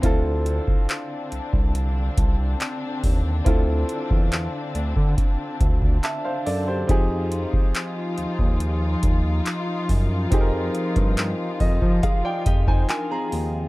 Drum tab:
HH |x-x-x-x-x-x-x-o-|x-x-x-x-x-x-x-o-|x-x-x-x-x-x-x-o-|x-xxx-o-x-x-x-o-|
CP |----x-------x---|----x-------x---|----x-------x---|----x-------x---|
BD |o--o---o--o---o-|o--o---oo-oo----|o--o---o--o---o-|o--o--ooo-oo----|